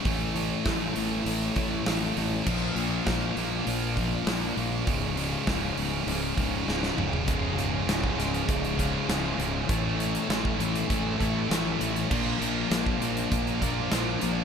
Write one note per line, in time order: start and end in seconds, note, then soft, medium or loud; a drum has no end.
0.04 0.52 A1 medium
0.04 0.34 A2 medium
0.04 0.35 E3 medium
0.04 2.43 A3 medium
0.04 0.35 A3 medium
0.04 2.43 E4 medium
0.04 2.44 C#5 medium
0.04 kick loud
0.04 open hi-hat medium
0.35 0.65 A2 medium
0.35 0.65 E3 medium
0.35 0.66 A3 loud
0.35 open hi-hat medium
0.66 0.89 A1 medium
0.66 0.94 A2 medium
0.66 0.95 E3 medium
0.66 0.96 A3 medium
0.66 kick medium
0.66 snare loud
0.66 open hi-hat medium
0.95 1.20 A1 medium
0.95 1.24 A2 medium
0.95 1.24 E3 medium
0.95 1.25 A3 medium
0.95 open hi-hat medium
1.25 1.49 A1 loud
1.25 1.55 A2 medium
1.25 1.56 E3 medium
1.25 1.56 A3 medium
1.25 open hi-hat medium
1.56 1.79 A1 medium
1.56 1.85 A2 medium
1.56 1.86 E3 medium
1.56 1.86 A3 medium
1.56 kick medium
1.56 open hi-hat medium
1.86 2.10 A1 medium
1.86 2.15 A2 medium
1.86 2.16 E3 medium
1.86 2.16 A3 medium
1.86 snare loud
1.86 open hi-hat medium
2.16 2.40 A1 medium
2.16 2.44 A2 medium
2.16 2.45 E3 medium
2.16 2.45 A3 medium
2.16 open hi-hat medium
2.47 2.70 A#1 medium
2.47 2.76 A#2 medium
2.47 2.77 F3 medium
2.47 2.77 A#3 loud
2.47 4.86 A#3 medium
2.47 4.85 F4 medium
2.47 4.85 D5 medium
2.47 kick loud
2.47 crash medium
2.76 2.99 A#1 medium
2.76 3.06 A#2 medium
2.76 3.08 F3 medium
2.76 3.07 A#3 medium
2.76 open hi-hat medium
3.07 3.30 A#1 medium
3.07 3.36 A#2 medium
3.07 3.37 F3 medium
3.07 3.37 A#3 medium
3.07 kick medium
3.07 snare loud
3.07 open hi-hat medium
3.37 3.60 A#1 medium
3.37 3.65 A#2 medium
3.37 3.66 F3 medium
3.37 3.67 A#3 medium
3.37 open hi-hat medium
3.66 4.14 A#1 medium
3.66 3.95 A#2 loud
3.66 3.97 F3 loud
3.66 3.97 A#3 loud
3.66 open hi-hat medium
3.97 4.25 A#2 medium
3.97 4.27 F3 medium
3.97 4.26 A#3 loud
3.97 kick medium
3.97 open hi-hat medium
4.26 4.50 A#1 loud
4.26 4.55 A#2 medium
4.26 4.56 F3 medium
4.26 4.56 A#3 medium
4.26 snare loud
4.26 open hi-hat medium
4.56 4.80 A#1 medium
4.56 4.85 A#2 medium
4.56 4.87 F3 medium
4.56 4.86 A#3 medium
4.56 open hi-hat medium
4.86 5.34 C#1 loud
4.86 5.15 C#2 loud
4.86 5.15 G#2 loud
4.86 5.16 C#3 loud
4.86 7.25 C#4 medium
4.86 7.24 G#4 medium
4.86 7.25 F5 medium
4.86 kick loud
4.86 open hi-hat medium
5.16 5.45 C#2 medium
5.16 5.45 G#2 medium
5.16 5.46 C#3 loud
5.16 open hi-hat medium
5.46 5.71 C#1 medium
5.46 5.75 C#2 medium
5.46 5.76 G#2 medium
5.46 5.76 C#3 medium
5.46 kick medium
5.46 snare loud
5.46 open hi-hat medium
5.77 6.01 C#1 medium
5.77 6.05 C#2 medium
5.77 6.06 G#2 medium
5.77 6.06 C#3 medium
5.77 open hi-hat medium
6.07 6.31 C#1 medium
6.07 6.35 C#2 loud
6.07 6.35 G#2 loud
6.07 6.36 C#3 loud
6.07 open hi-hat medium
6.36 6.61 C#1 medium
6.36 6.64 C#2 medium
6.36 6.65 G#2 medium
6.36 6.65 C#3 loud
6.36 kick medium
6.36 open hi-hat medium
6.66 6.92 C#1 medium
6.66 6.95 C#2 medium
6.66 6.95 G#2 medium
6.66 6.96 C#3 medium
6.66 snare medium
6.83 snare medium
6.96 7.21 C#1 medium
6.96 7.25 C#2 medium
6.96 7.26 G#2 medium
6.96 7.26 C#3 medium
6.96 mid tom medium
7.13 floor tom medium
7.25 7.52 C#1 medium
7.25 7.54 C#2 medium
7.25 7.55 G#2 loud
7.25 7.56 C#3 loud
7.25 12.05 C#4 medium
7.25 9.65 G#4 medium
7.25 9.66 F5 medium
7.25 kick loud
7.25 closed hi-hat medium
7.30 8.78 G#3 loud
7.30 8.77 F4 medium
7.56 7.81 C#1 medium
7.56 7.86 C#2 medium
7.56 7.86 G#2 medium
7.56 7.87 C#3 loud
7.56 closed hi-hat medium
7.87 8.11 C#1 medium
7.87 8.16 C#2 medium
7.87 8.16 G#2 medium
7.87 8.17 C#3 medium
7.87 snare loud
7.87 closed hi-hat medium
8.04 kick medium
8.17 8.41 C#1 medium
8.17 8.45 C#2 medium
8.17 8.46 G#2 medium
8.17 8.46 C#3 medium
8.17 snare soft
8.17 closed hi-hat medium
8.34 closed hi-hat soft
8.47 8.95 C#1 loud
8.47 8.76 C#2 loud
8.47 8.76 G#2 loud
8.47 8.77 C#3 loud
8.47 kick loud
8.47 closed hi-hat medium
8.64 closed hi-hat soft
8.77 9.05 C#2 medium
8.77 9.06 G#2 medium
8.77 9.06 C#3 medium
8.77 9.07 G#3 medium
8.77 9.07 F4 medium
8.77 kick medium
8.77 closed hi-hat medium
9.06 9.32 C#1 loud
9.06 9.35 C#2 medium
9.06 9.36 G#2 medium
9.06 9.37 C#3 medium
9.06 9.68 G#3 medium
9.06 9.68 F4 medium
9.06 snare loud
9.06 closed hi-hat loud
9.36 9.62 C#1 loud
9.36 9.66 C#2 medium
9.36 9.66 G#2 medium
9.36 9.67 C#3 medium
9.36 closed hi-hat medium
9.67 10.16 A1 medium
9.67 9.96 A2 medium
9.67 9.96 E3 loud
9.67 9.97 A3 loud
9.67 11.18 C#4 medium
9.67 11.19 E4 medium
9.67 12.08 A4 medium
9.67 11.18 A4 medium
9.67 12.07 E5 medium
9.67 kick loud
9.67 closed hi-hat medium
9.97 10.26 A2 medium
9.97 10.26 E3 medium
9.97 10.27 A3 medium
9.97 closed hi-hat medium
10.15 closed hi-hat soft
10.27 10.53 A1 medium
10.27 10.56 A2 medium
10.27 10.57 E3 medium
10.27 10.57 A3 medium
10.27 snare loud
10.27 closed hi-hat loud
10.45 kick medium
10.57 10.83 A1 medium
10.57 10.86 A2 medium
10.57 10.87 E3 loud
10.57 10.88 A3 medium
10.57 closed hi-hat medium
10.75 closed hi-hat medium
10.88 11.13 A1 medium
10.88 11.18 A2 loud
10.88 11.18 E3 loud
10.88 11.19 A3 loud
10.88 kick loud
10.88 closed hi-hat medium
11.19 11.44 A1 medium
11.19 11.48 A2 medium
11.19 11.48 E3 medium
11.19 11.48 A3 medium
11.19 11.48 C#4 medium
11.19 11.48 E4 medium
11.19 11.48 A4 medium
11.19 kick medium
11.19 closed hi-hat medium
11.49 11.74 A1 loud
11.49 11.77 A2 medium
11.49 11.78 E3 medium
11.49 11.78 A3 medium
11.49 12.09 C#4 medium
11.49 12.09 E4 medium
11.49 snare loud
11.49 closed hi-hat loud
11.53 12.10 A4 medium
11.78 12.04 A1 medium
11.78 12.07 A2 medium
11.78 12.08 E3 medium
11.78 12.08 A3 medium
11.78 closed hi-hat medium
11.96 closed hi-hat medium
12.09 12.34 A#1 medium
12.09 12.38 A#2 loud
12.09 12.38 F3 loud
12.09 12.39 A#3 loud
12.09 14.44 D4 medium
12.09 13.60 D4 medium
12.09 13.60 F4 medium
12.09 14.44 A#4 medium
12.09 14.44 F5 medium
12.09 kick loud
12.09 crash loud
12.13 13.59 A#4 loud
12.39 12.64 A#1 medium
12.39 12.69 A#2 medium
12.39 12.70 F3 medium
12.39 12.71 A#3 medium
12.39 closed hi-hat medium
12.70 12.94 A#1 medium
12.70 12.99 A#2 medium
12.70 12.99 F3 medium
12.70 13.00 A#3 loud
12.70 snare loud
12.70 closed hi-hat loud
12.87 kick medium
13.00 13.25 A#1 medium
13.00 13.29 A#2 medium
13.00 13.30 F3 medium
13.00 13.30 A#3 medium
13.00 closed hi-hat medium
13.17 closed hi-hat soft
13.31 13.78 A#1 loud
13.31 13.59 A#2 loud
13.31 13.60 F3 loud
13.31 13.61 A#3 loud
13.31 kick medium
13.31 closed hi-hat medium
13.47 closed hi-hat soft
13.61 13.90 A#2 medium
13.61 13.90 F3 loud
13.61 13.91 A#3 loud
13.61 13.89 D4 medium
13.61 13.89 F4 medium
13.61 13.89 A#4 medium
13.61 kick medium
13.61 closed hi-hat medium
13.91 14.15 A#1 loud
13.91 14.21 A#2 medium
13.91 14.21 F3 medium
13.91 14.21 A#3 medium
13.91 14.44 D4 medium
13.91 14.44 F4 medium
13.91 14.44 A#4 medium
13.91 snare loud
13.91 closed hi-hat loud
14.21 14.44 A#1 medium
14.21 14.44 A#2 medium
14.21 14.44 F3 medium
14.21 14.44 A#3 medium
14.21 closed hi-hat medium